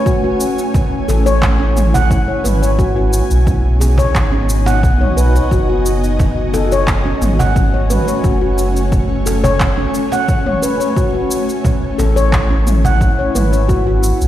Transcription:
Already playing: ambient pad A3 C#4 F#4 C#5 G#5
0.06 handpan F#4, kick, shaker
0.24 ambient pad E4, handpan F#4
0.40 shaker
0.58 shaker
0.74 kick, cajon bass, shaker
1.08 sub bass A1, handpan A4, cajon slap, shaker
1.26 handpan C#5, shaker
1.42 kick, clap, shaker
1.60 handpan C#4
1.77 cajon slap, mid tom, shaker
1.94 handpan F#5, cajon bass, shaker
2.11 kick, shaker
2.28 handpan C#5
2.44 sub bass G#1, handpan B4, mid tom, shaker
2.62 handpan C#5, shaker
2.78 ambient pad B3, handpan F#4, kick, shaker
2.91 ambient pad D#4
2.96 handpan F#4
3.10 ambient pad F#4, shaker
3.31 sub bass B1, shaker
3.47 ambient pad D#5, kick, shaker
3.80 handpan G#4, cajon slap, shaker
3.98 handpan C#5, cajon bass, shaker
4.15 sub bass G#1, kick, clap, shaker
4.32 handpan C#4
4.49 shaker
4.66 handpan F#5, cajon slap, shaker
4.83 sub bass B1, kick, shaker
5.01 handpan C#5, mid tom
5.17 sub bass B1, handpan B4, shaker
5.36 handpan C#5, shaker
5.51 sub bass F#1, ambient pad A3, handpan F#4, kick, shaker
5.69 handpan F#4
5.81 ambient pad C#4
5.86 shaker
6.04 shaker
6.19 cajon bass, kick, shaker
6.54 handpan A4, cajon slap, shaker
6.72 handpan C#5, shaker
6.88 kick, clap, shaker
7.06 handpan C#4
7.21 sub bass G#1, cajon slap, mid tom, shaker
7.39 handpan F#5, cajon bass, shaker
7.46 ambient pad C#5
7.56 kick, shaker
7.74 handpan C#5
7.90 handpan B4, mid tom, shaker
8.08 handpan C#5, shaker
8.24 sub bass F#1, handpan F#4, kick, shaker
8.41 handpan F#4
8.58 shaker
8.77 shaker
8.92 kick, shaker
9.26 handpan A4, cajon slap, shaker
9.44 handpan C#5, cajon bass, shaker
9.60 kick, clap, shaker
9.78 handpan C#4
9.94 shaker
10.12 handpan F#5, cajon slap, shaker
10.28 kick, shaker
10.46 handpan C#5, mid tom
10.62 handpan B4, shaker
10.80 handpan C#5, shaker
10.97 handpan F#4, kick, shaker
11.14 handpan F#4
11.23 ambient pad E4
11.31 shaker
11.49 shaker
11.65 kick, cajon bass, shaker
11.98 sub bass A1, handpan A4, cajon slap, shaker
12.16 handpan C#5, shaker
12.33 kick, clap, shaker
12.51 handpan C#4
12.67 cajon slap, mid tom, shaker
12.85 handpan F#5, cajon bass, shaker
13.01 kick, shaker
13.19 handpan C#5
13.35 sub bass G#1, handpan B4, mid tom, shaker
13.53 handpan C#5, shaker
13.68 ambient pad B3, handpan F#4, kick, shaker
13.87 handpan F#4
14.03 shaker
14.21 sub bass B1, shaker

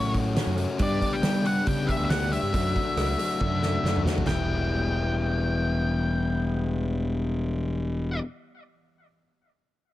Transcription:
Already playing: fingered electric bass A2, overdriven electric guitar F#3 A3 C#4 F#4, lead electric guitar C#5
0.14 kick, open hi-hat
0.36 overdriven electric guitar F#3 A3 C#4 F#4, snare, open hi-hat
0.46 fingered electric bass F#2
0.57 overdriven electric guitar A3 C#4 F#4, open hi-hat
0.78 fingered electric bass G2, overdriven electric guitar G3 B3 D4 G4, kick, open hi-hat
0.82 lead electric guitar D5
1.01 overdriven electric guitar B3 D4 G4, kick, open hi-hat
1.13 lead electric guitar G5
1.21 overdriven electric guitar G3 B3 D4 G4, fingered electric bass G3, snare, open hi-hat
1.45 overdriven electric guitar B3 D4 G4, lead electric guitar F#5, open hi-hat
1.66 fingered electric bass C#3, overdriven electric guitar G3 B3 D4 G4, lead electric guitar G5, kick, open hi-hat
1.88 lead electric guitar E5, kick, open hi-hat
1.99 fingered electric bass D2
2.05 lead electric guitar E5
2.09 overdriven electric guitar G3 B3 D4 G4, lead electric guitar F#5, snare, open hi-hat
2.31 overdriven electric guitar B3 D4 G4, lead electric guitar E5, open hi-hat
2.42 fingered electric bass G2
2.52 fingered electric bass F#2, overdriven electric guitar F#3 A3 D4 F#4, kick, open hi-hat
2.74 overdriven electric guitar A3 D4 F#4, kick, open hi-hat
2.96 fingered electric bass C#2, overdriven electric guitar F#3 A3 D4, cross-stick, open hi-hat
3.01 overdriven electric guitar F#4
3.18 overdriven electric guitar A3 D4 F#4, open hi-hat
3.40 fingered electric bass F#2, overdriven electric guitar F#3 A3 D4 F#4, kick, high tom
3.63 snare
3.83 fingered electric bass F#2, overdriven electric guitar F#3 A3 D4 F#4, snare
3.96 mid tom
4.05 fingered electric bass E2, overdriven electric guitar A3 D4 F#4, snare
4.18 floor tom
4.26 fingered electric bass E1, overdriven electric guitar E3 G3 B3, lead electric guitar G5, snare, floor tom
4.30 overdriven electric guitar E4

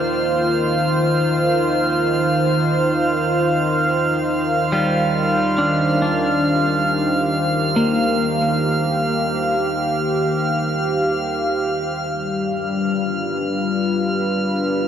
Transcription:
Already playing: analog synth pad D#3 A#3 F4 C5 F5, clean electric guitar D5 D6, synth texture F6
4.72 clean electric guitar G3 F4
5.58 clean electric guitar D4
6.02 clean electric guitar D4
6.48 analog synth pad G4
7.76 clean electric guitar A#3
12.07 analog synth pad G3, synth texture F6
12.40 analog synth pad D4
12.63 analog synth pad F4 B4

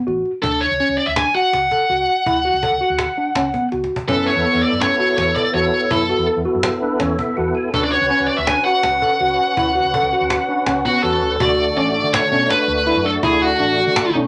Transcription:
0.07 fretless electric bass A1, tine electric piano F#4, cajon slap
0.25 cajon slap
0.43 fretless electric bass D2, tine electric piano D4, lead electric guitar A4, cajon bass
0.61 lead electric guitar C#5, cajon slap
0.71 fretless electric bass C#2
0.80 tine electric piano C#4, cajon slap
0.89 fretless electric bass C#2
0.98 lead electric guitar D5, cajon slap
1.07 fretless electric bass D2, lead electric guitar E5
1.16 tine electric piano D4, lead electric guitar G#5, cajon slap
1.35 tine electric piano F#4, lead electric guitar F#5, cajon slap
1.53 fretless electric bass C#2, cajon slap
1.71 tine electric piano A4, cajon bass
1.90 fretless electric bass C#2, tine electric piano F#4, cajon slap
2.08 cajon slap
2.26 fretless electric bass D2, tine electric piano E4, cajon bass
2.45 tine electric piano F#4, cajon slap
2.54 fretless electric bass C#2
2.63 tine electric piano A4, cajon bass
2.71 fretless electric bass C#2
2.81 tine electric piano F#4, cajon slap
2.90 fretless electric bass D2
2.99 cajon slap
3.17 tine electric piano D4, cajon slap
3.35 fretless electric bass C#2, tine electric piano C#4, cajon slap
3.54 tine electric piano B3, cajon bass
3.72 fretless electric bass C#2, tine electric piano F#4, cajon slap
3.84 cajon slap
3.91 cajon slap
3.96 cajon bass
4.08 fretless electric bass F#2, tonewheel organ B3 E4 A4, tine electric piano C#4, lead electric guitar A4, cajon bass
4.26 lead electric guitar C#5, cajon slap
4.36 fretless electric bass E2
4.45 tine electric piano B3, cajon slap
4.54 fretless electric bass E2
4.63 lead electric guitar D5, cajon slap
4.72 fretless electric bass F#2
4.81 tine electric piano C#4, lead electric guitar C#5, cajon slap
4.99 tine electric piano F#4, cajon slap
5.18 fretless electric bass E2, lead electric guitar C#5, cajon slap
5.36 tine electric piano A4, lead electric guitar D5, cajon bass
5.54 fretless electric bass E2, tine electric piano F#4, lead electric guitar C#5, cajon slap
5.73 cajon slap
5.91 fretless electric bass F#2, tine electric piano E4, lead electric guitar A4, cajon bass
6.08 tine electric piano F#4, cajon slap
6.18 fretless electric bass E2
6.27 tine electric piano A4, cajon slap
6.36 fretless electric bass E2
6.45 tine electric piano F#4, cajon slap
6.55 fretless electric bass F#2
6.63 cajon slap
6.82 tine electric piano D4, tonewheel organ B4, cajon slap
6.99 fretless electric bass E2, tine electric piano C#4, tonewheel organ C#5, cajon slap
7.18 tine electric piano B3, tonewheel organ E5, cajon bass
7.37 fretless electric bass E2, tine electric piano F#4, tonewheel organ F#5, cajon slap
7.55 tonewheel organ G#5, cajon slap
7.73 fretless electric bass D2, tonewheel organ C#4 F#4 B4, tine electric piano D4, lead electric guitar A4, cajon bass
7.84 lead electric guitar D5
7.92 lead electric guitar C#5, cajon slap
8.01 fretless electric bass C#2
8.11 tine electric piano C#4, cajon slap
8.20 fretless electric bass C#2
8.28 lead electric guitar D5, cajon slap
8.37 fretless electric bass D2, lead electric guitar E5
8.47 tine electric piano D4, lead electric guitar G#5, cajon slap
8.65 tine electric piano F#4, lead electric guitar F#5, cajon slap
8.83 fretless electric bass C#2, cajon slap
9.02 tine electric piano A4, cajon bass
9.20 fretless electric bass C#2, tine electric piano F#4, cajon slap
9.39 cajon slap
9.57 fretless electric bass D2, tine electric piano E4, cajon bass
9.75 tine electric piano F#4, cajon slap
9.85 fretless electric bass C#2
9.94 tine electric piano A4, cajon bass
10.03 fretless electric bass C#2
10.12 tine electric piano F#4, cajon slap
10.21 fretless electric bass D2
10.30 cajon slap
10.49 tine electric piano D4, cajon slap
10.66 fretless electric bass C#2, tine electric piano C#4, cajon slap
10.85 tine electric piano B3, lead electric guitar F#4, cajon bass
11.03 fretless electric bass E2, tine electric piano F#4, lead electric guitar A4, cajon slap
11.22 fretless electric bass D2, cajon slap
11.40 fretless electric bass D2, tonewheel organ A3 D4 F#4, tine electric piano F#4, lead electric guitar D5, cajon bass
11.59 cajon slap
11.77 fretless electric bass A1, tine electric piano C#4, lead electric guitar D5, cajon slap
11.95 tine electric piano D4, cajon slap
12.03 fretless electric bass D3
12.14 lead electric guitar C#5, cajon slap
12.32 fretless electric bass B2, tine electric piano C#4, cajon slap
12.50 tine electric piano D4, lead electric guitar B4, cajon slap
12.68 fretless electric bass D2, cajon slap
12.87 tine electric piano E4, cajon slap
12.96 fretless electric bass F#2
13.05 tine electric piano D4, lead electric guitar A4, cajon slap
13.23 fretless electric bass D2, tine electric piano E4, lead electric guitar G#4, cajon bass
13.41 lead electric guitar F#4, cajon slap
13.60 fretless electric bass A1, tine electric piano D4, cajon slap
13.78 tine electric piano F#4, cajon slap
13.87 fretless electric bass D3
13.96 cajon slap
14.15 fretless electric bass B2, tine electric piano C#4, cajon slap

